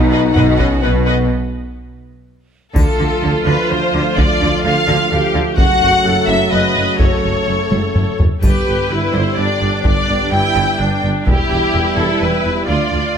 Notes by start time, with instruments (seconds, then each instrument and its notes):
Already playing: double bass section B1, tuba B1, cello section B2, string section B3 D#4 F#4 F#5, french horn section D#4
0.11 viola section B4, violin section D#5 F#5
0.33 tuba B1, double bass section B1, cello section B2, viola section B4, violin section D#5 F#5, taiko low-mid
0.56 french horn section C#4, viola section B4, violin section D#5 F#5, taiko
0.82 tuba B1, double bass section B1, cello section B2, french horn section B3, viola section B4, violin section D#5 F#5
1.06 viola section B4, violin section D#5 F#5
2.74 tuba D2, double bass section D2, cello section D3, trombone section D3 F3, french horn section A3 A4, viola section F4, violin section A4, taiko, triangle
2.99 tuba D2, double bass section D2, cello section D3
3.23 tuba D2, double bass section D2, cello section D3
3.45 tuba D2, double bass section D2, cello section D3, violin section B4
3.69 double bass section D2, tuba D2, cello section D3, violin section C5
3.93 double bass section D2, tuba D2, cello section D3
4.17 double bass section D2, tuba D2, cello section D3, violin section D5, taiko
4.41 double bass section D2, tuba D2, cello section D3
4.64 double bass section D2, tuba D2, cello section D3, violin section F5
4.88 double bass section D2, tuba D2, cello section D3
5.11 tuba D2, double bass section D2, cello section D3, viola section G4
5.34 tuba D2, double bass section D2, cello section D3
5.57 tuba F#1, double bass section F#1, cello section F#2, trombone section C#3 F#3, french horn section A3 A4, viola section F#4, violin section F#5, taiko
5.80 tuba F#1, double bass section F#1, cello section F#2
6.04 tuba F#1, double bass section F#1, cello section F#2, viola section A4
6.27 tuba F#1, double bass section F#1, cello section F#2, violin section E5
6.51 tuba F#1, double bass section F#1, cello section F#2, viola section B4, violin section D#5
6.75 tuba F#1, double bass section F#1, cello section F#2
6.99 tuba F#1, double bass section F#1, cello section F#2, viola section A4, violin section C#5, taiko
7.23 tuba F#1, double bass section F#1, cello section F#2
7.47 double bass section F#1, tuba F#1, cello section F#2
7.70 double bass section F#1, tuba F#1, cello section F#2, taiko high
7.94 double bass section F#1, tuba F#1, cello section F#2, taiko low-mid
8.18 tuba F#1, double bass section F#1, cello section F#2, taiko low
8.42 tuba G1, double bass section G1, cello section G2, trombone section D3 G3, french horn section B3 G4, viola section G4, violin section B4, taiko, triangle
8.66 tuba G1, double bass section G1, cello section G2
8.89 double bass section G1, tuba G1, cello section G2, viola section E4
9.13 tuba G1, double bass section G1, cello section G2, violin section C5
9.36 tuba G1, double bass section G1, cello section G2, viola section D4, violin section D5
9.61 tuba G1, double bass section G1, cello section G2
9.83 double bass section G1, tuba G1, cello section G2, violin section D5, taiko
10.08 double bass section G1, tuba G1, cello section G2
10.31 double bass section G1, tuba G1, cello section G2, viola section E4, violin section G5
10.55 double bass section G1, tuba G1, cello section G2
10.79 double bass section G1, tuba G1, cello section G2, viola section D4
11.02 double bass section G1, tuba G1, cello section G2
11.26 tuba E1, double bass section E1, cello section E2, trombone section E3 G3, french horn section B3 G4, viola section E4, violin section G4, taiko
11.49 double bass section E1, tuba E1, cello section E2
11.72 tuba E1, double bass section E1, cello section E2
11.96 tuba E1, double bass section E1, cello section E2, violin section A4
12.20 tuba E1, double bass section E1, cello section E2, violin section B4
12.43 tuba E1, double bass section E1, cello section E2
12.67 cello section D2, tuba D2, double bass section D2, trombone section D3 A3, french horn section D4 F4, viola section F4, violin section D5
12.91 cello section D2, tuba D2, double bass section D2